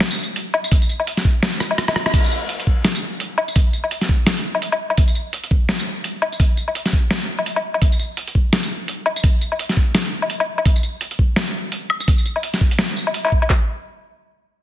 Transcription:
0.00 snare, closed hi-hat
0.06 closed hi-hat
0.11 tambourine
0.15 tambourine
0.18 tambourine
0.24 tambourine
0.36 closed hi-hat
0.54 low woodblock
0.64 tambourine
0.72 kick, closed hi-hat
0.82 tambourine
0.89 tambourine
1.00 low woodblock
1.07 closed hi-hat
1.17 snare, closed hi-hat
1.25 kick
1.43 snare, closed hi-hat
1.53 closed hi-hat
1.60 cross-stick, tambourine
1.71 low woodblock
1.78 cross-stick, closed hi-hat
1.88 cross-stick, low woodblock
1.96 cross-stick
2.06 cross-stick, low woodblock
2.14 kick, closed hi-hat, crash
2.24 tambourine
2.32 tambourine
2.49 closed hi-hat
2.60 closed hi-hat
2.67 kick
2.85 snare, closed hi-hat
2.95 closed hi-hat, tambourine
3.20 closed hi-hat
3.38 low woodblock
3.48 tambourine
3.56 kick, closed hi-hat
3.73 tambourine
3.84 low woodblock
3.91 closed hi-hat
4.01 snare, closed hi-hat
4.09 kick
4.27 snare, closed hi-hat
4.37 closed hi-hat
4.55 low woodblock
4.62 closed hi-hat
4.72 low woodblock
4.90 low woodblock
4.97 kick, closed hi-hat
5.08 tambourine
5.15 tambourine
5.33 closed hi-hat
5.44 closed hi-hat
5.51 kick
5.69 snare, closed hi-hat
5.79 closed hi-hat, tambourine
6.04 closed hi-hat
6.22 low woodblock
6.32 tambourine
6.40 kick, closed hi-hat
6.57 tambourine
6.68 low woodblock
6.75 closed hi-hat
6.86 snare, closed hi-hat
6.93 kick
7.11 snare, closed hi-hat
7.21 closed hi-hat
7.39 low woodblock
7.46 closed hi-hat
7.56 low woodblock
7.74 low woodblock
7.82 kick, closed hi-hat
7.92 tambourine
7.99 tambourine
8.17 closed hi-hat
8.28 closed hi-hat
8.35 kick
8.53 snare, closed hi-hat
8.63 closed hi-hat, tambourine
8.88 closed hi-hat
9.06 low woodblock
9.16 tambourine
9.24 kick, closed hi-hat
9.41 tambourine
9.52 low woodblock
9.59 closed hi-hat
9.69 snare, closed hi-hat
9.77 kick
9.95 snare, closed hi-hat
10.05 closed hi-hat
10.22 low woodblock
10.30 closed hi-hat
10.40 low woodblock
10.58 low woodblock
10.65 kick, closed hi-hat
10.76 tambourine
10.83 tambourine
11.01 closed hi-hat
11.11 closed hi-hat
11.19 kick
11.36 snare, closed hi-hat
11.47 closed hi-hat
11.72 closed hi-hat
11.90 low woodblock
12.00 tambourine
12.08 kick, closed hi-hat
12.18 tambourine
12.26 tambourine
12.36 low woodblock
12.43 closed hi-hat
12.54 snare, closed hi-hat
12.61 kick
12.71 closed hi-hat
12.79 snare, closed hi-hat
12.89 closed hi-hat
12.96 tambourine
13.07 low woodblock
13.14 closed hi-hat
13.25 low woodblock
13.26 low woodblock
13.28 low woodblock
13.30 kick, low woodblock
13.42 low woodblock
13.50 kick, snare, clap

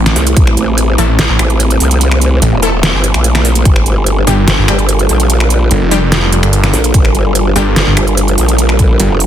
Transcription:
Already playing: A1 A3 C4 E4
0.06 finger snap, snare, closed hi-hat
0.16 C2, open hi-hat
0.27 closed hi-hat
0.37 A1, kick, closed hi-hat
0.47 finger snap
0.57 A1, closed hi-hat
0.78 closed hi-hat
0.98 A1 A3 E4 A4, open hi-hat
1.19 A1, snare, closed hi-hat
1.29 A1
1.39 A1, finger snap, closed hi-hat
1.50 closed hi-hat
1.60 closed hi-hat
1.70 closed hi-hat
1.80 C2, open hi-hat
1.91 closed hi-hat
2.01 closed hi-hat
2.11 finger snap
2.21 closed hi-hat
2.42 A1, closed hi-hat
2.53 E1
2.63 A3 E4 A4, open hi-hat
2.83 snare, closed hi-hat
2.94 G1
3.04 closed hi-hat
3.14 A#1, finger snap, closed hi-hat
3.24 closed hi-hat
3.35 finger snap, snare, closed hi-hat
3.45 open hi-hat
3.55 closed hi-hat
3.65 G1 G3 D4 F4 A4 A#4, kick, closed hi-hat
3.76 finger snap
3.86 G1, closed hi-hat
4.07 closed hi-hat
4.27 G1 G3 D4 G4, open hi-hat
4.48 G1, snare, closed hi-hat
4.58 G1
4.68 G1 G3 D4 G4, finger snap, closed hi-hat
4.79 closed hi-hat
4.89 closed hi-hat
4.99 closed hi-hat
5.09 A#1, open hi-hat
5.20 closed hi-hat
5.30 closed hi-hat
5.40 finger snap
5.50 closed hi-hat
5.71 G1, closed hi-hat
5.81 F1
5.91 G3 D4 G4, open hi-hat
6.12 snare, closed hi-hat
6.32 closed hi-hat
6.43 G1, finger snap, closed hi-hat
6.53 closed hi-hat
6.64 finger snap, snare, closed hi-hat
6.74 A#1, open hi-hat
6.84 closed hi-hat
6.94 G1, kick, closed hi-hat
7.05 finger snap
7.15 G1, closed hi-hat
7.35 closed hi-hat
7.56 G1 G3 D4 G4, open hi-hat
7.76 G1, snare, closed hi-hat
7.87 G1
7.97 G1, finger snap, closed hi-hat
8.07 closed hi-hat
8.17 closed hi-hat
8.28 closed hi-hat
8.38 A#1, open hi-hat
8.49 closed hi-hat
8.58 closed hi-hat
8.69 finger snap
8.79 kick, closed hi-hat
9.00 G1, closed hi-hat
9.10 F1
9.20 open hi-hat

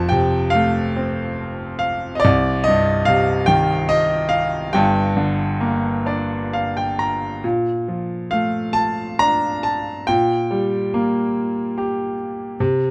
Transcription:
Already playing: F1 F2 A5
0.09 C3 G5
0.50 F5
0.55 A3
0.96 C4
1.79 F5
2.15 D#5
2.20 D5
2.25 C2
2.64 D#5
2.68 G2
3.05 C3 F5
3.46 D#3 G5
3.89 D#5
4.29 F5
4.73 G1 G2 G5
5.17 D3
5.61 A#3
6.06 D4 D5
6.53 F5
6.77 G5
6.99 A#5
7.44 A#2
7.88 F3
8.31 A3 F5
8.73 A5
9.19 D4 A#5
9.63 A5
10.07 A#2 G5
10.51 G3
10.94 A#3
11.78 G4
12.60 C3

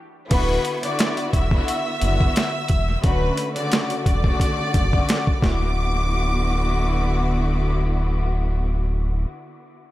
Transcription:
0.29 D1 D3 B3 E4 F#4 B4 B5, kick, closed hi-hat, crash
0.65 closed hi-hat
0.82 D3 B3 E4 F#4 D5 D6, closed hi-hat
0.99 snare, closed hi-hat
1.17 closed hi-hat
1.33 E1 E5 E6, kick, closed hi-hat
1.51 D3 B3 E4 F#4, kick
1.68 closed hi-hat
2.01 F#1 D3 B3 E4 F#4, closed hi-hat
2.21 kick
2.36 snare, closed hi-hat
2.68 E1, kick, closed hi-hat
3.02 D1 D3 A3 C#4 F#4 B4 B5, kick, closed hi-hat
3.37 closed hi-hat
3.54 C#3 D3 A3 F#4 D5 D6, closed hi-hat
3.72 snare, closed hi-hat
3.90 closed hi-hat
4.06 E1 D5 D6, kick, closed hi-hat
4.24 C#3 D3 A3 F#4, kick
4.40 kick, closed hi-hat
4.74 F#1, kick, closed hi-hat
4.91 C#3 D3 A3 F#4, kick
5.09 snare, closed hi-hat
5.27 kick
5.42 D1 D3 B3 E4 F#4 D6, kick, snare

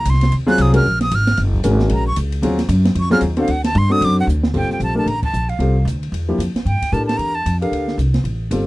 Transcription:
Already playing: A#5
0.05 C2, hi-hat pedal, ride
0.10 C6
0.14 snare
0.21 snare, ride
0.32 D#2, ride
0.46 F#3 C4 F4 G#4 F#6, snare
0.58 C2 D#6, hi-hat pedal, ride
0.73 G#3 C#4 F#4 A#4 F6, ride
0.86 A#1
1.01 D#6, snare, ride
1.11 G#1 F6, hi-hat pedal, ride
1.27 snare, ride
1.37 F#1, snare, ride
1.53 kick
1.64 G#1 G#3 C#4 F#4 A#4, hi-hat pedal, ride
1.79 snare
1.89 A#1, ride
1.94 A#5
2.07 C#6
2.16 C#2, hi-hat pedal, ride
2.32 ride
2.42 D#2 F#3 C4 F4 G#4, ride
2.59 snare, ride
2.69 F#2, hi-hat pedal, ride
2.85 snare, ride
2.95 F2, ride
3.00 C#6
3.10 F#3 C4 F4 G#4 F6, snare
3.21 D#2, hi-hat pedal, ride
3.37 C4 D4 F#4 A4 F5, ride
3.47 D2 F#5, ride
3.64 A5, snare, ride
3.75 G2 C6, hi-hat pedal
3.90 C4 D4 F#4 A4 D#6
4.01 F#2 D6, ride
4.20 F#5
4.27 D2, hi-hat pedal
4.43 snare
4.53 G1 G3 C4 F4 A4 G5, kick, crash
4.70 G5, muted upright bass stroke, snare
4.80 A#1 A5, hi-hat pedal, ride
4.95 A3 D4 G4 A#4 A5
5.06 A1 A#5, ride
5.23 A5, kick, crash
5.33 A#1, hi-hat pedal
5.49 F5, ride
5.59 C2 G3 C4 F4 A4, ride
5.85 D2, hi-hat pedal, ride
6.03 ride
6.12 E2, ride
6.28 F3 A#3 E4 G4
6.38 F2, hi-hat pedal, ride
6.55 muted upright bass stroke, snare, ride
6.65 G2 G5, ride
6.82 muted upright bass stroke, kick, ride
6.92 A2 D4 G4 A4 A#4 A5, hi-hat pedal
7.06 A5, snare, ride
7.17 E2 A#5, ride
7.35 A5
7.46 F2, hi-hat pedal, ride
7.61 D4 G4 A4 A#4 F5, ride
7.71 D2, ride
7.88 snare
7.98 C2, hi-hat pedal, ride
8.14 snare, ride
8.24 A1, ride
8.51 G1 G3 C4 F4 A4, hi-hat pedal, ride

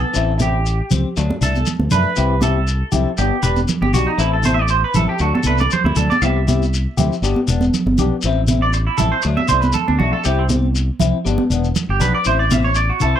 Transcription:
Already playing: A4
0.13 A1 E3 C4 E4, shekere
0.38 C4 E4 G4, high conga, shekere
0.66 shekere
0.91 C#2 C4, low conga, shekere
1.17 D2 F#3 D4, muted clean electric guitar stroke, shekere
1.30 high conga
1.41 C2 A3 D4 A4, shekere
1.55 high conga, shekere
1.66 low conga, shekere
1.79 D2, high conga
1.91 F#2 A3 D4 B4, low conga, shekere
2.16 C2 E3 C4 E4 G4, shekere
2.40 C4 E4 G4 A4, high conga, shekere
2.67 shekere
2.92 C2 C4 E4 G4, low conga, shekere
3.18 G1 B3 D4 G4, shekere
3.42 E1 D4 G4 B4, shekere
3.56 high conga, shekere
3.68 low conga, shekere
3.81 G1 G4, high conga
3.94 B1 D4 F#4 G4, low conga, shekere
4.07 D#4
4.18 A1 E3 C4 E4 A4, shekere
4.33 A4
4.43 C4 E4 A4 C5, high conga, shekere
4.54 E5
4.62 D5
4.68 C5, shekere
4.84 B4
4.94 A1 E4 A4, low conga, shekere
4.98 C4
5.09 G4
5.19 D2 F#3 D4 F#4 A4, muted clean electric guitar stroke, shekere
5.35 A4, high conga
5.43 C2 D4 A4 B4, shekere
5.47 A3
5.58 D5, high conga, shekere
5.71 C5, low conga, shekere
5.84 D2 E4, high conga
5.96 D2 D4 A4, low conga, shekere
6.10 D5, high conga, shekere
6.22 C2 E3 C4 E4 G4 E5, shekere
6.47 C4 E4 G4, high conga, shekere
6.63 shekere
6.74 shekere
6.97 D2 C4 E4 G4, low conga, shekere
7.12 shekere
7.22 G1 G3 B3 D4 G4, shekere
7.36 high conga
7.47 E1 B3 D4, muted clean electric guitar stroke, shekere
7.61 high conga, shekere
7.74 low conga, shekere
7.86 G1, high conga
7.98 B1 B3 D4 G4, low conga, shekere
8.22 A1 E3 C4, shekere
8.27 E4
8.47 E4, high conga, shekere
8.52 C4
8.62 D5
8.73 muted clean electric guitar stroke, shekere
8.87 E4
8.98 A1 E4 A4, low conga, shekere
9.02 C4
9.12 C5
9.22 D2 F#3 A3 D4, muted clean electric guitar stroke, shekere
9.37 E5, high conga
9.48 C2 D4 C5, shekere
9.52 A3
9.61 B4, high conga, shekere
9.73 A4, low conga, shekere
9.88 D2 D4, high conga
9.99 B1 A3 D4 F#4, low conga
10.13 A4
10.24 C2 G3 C4 E4 G4, shekere
10.39 C4
10.49 C4, high conga, shekere
10.75 shekere
11.00 C2 C4 E4, low conga, shekere
11.25 G1 G3 B3 D4, shekere
11.38 high conga
11.50 E1 B3 D4, shekere
11.64 shekere
11.76 low conga, shekere
11.89 G1 G4
12.00 B1 B3 D4 B4, low conga, shekere
12.15 D5
12.25 A1 E3 C4 E4 C5, shekere
12.39 D5
12.51 E4 E5, high conga, shekere
12.55 C4
12.64 C#5
12.75 D5, shekere
12.90 F#4
13.00 C2 E4 A4, shekere
13.06 C4
13.16 C5

